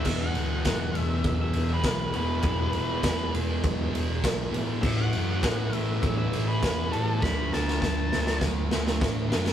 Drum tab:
CC |x---------------|----------------|x---------------|----------------|
RD |--x-x-x-x-x-x-x-|x-x-x-x-x-x-x-x-|--x-x-x-x-x-x-x-|----------------|
SD |----o-------o---|----o-------o---|----o-------o---|o-ooo-ooo-ooo-oo|
BD |o---o---o---o---|o---o---o---o---|o---o---o---o---|o---o---o---o---|